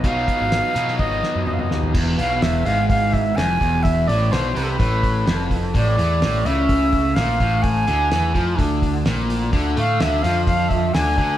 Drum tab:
CC |----------------|x---------------|----------------|----------------|
HH |x-x-x-x---------|--o-o-o-o-o-o-o-|o-o-o-o-o-o-o-o-|o-o-o-o-o-o-o-o-|
SD |----o--o--o---o-|----o-------o---|----o-------o---|----o-------o---|
T1 |--------o-------|----------------|----------------|----------------|
T2 |------------oo--|----------------|----------------|----------------|
FT |---------------o|----------------|----------------|----------------|
BD |o-o-----o-------|o-------o-o---o-|o-------o-o---o-|o-------o-o---o-|

CC |----------------|----------------|
HH |o-o-o-o-o-o-o-o-|o-o-o-o-o-o-o-o-|
SD |----o-------o---|----o-------o---|
T1 |----------------|----------------|
T2 |----------------|----------------|
FT |----------------|----------------|
BD |o-----o-o-o-----|o-------o-o---o-|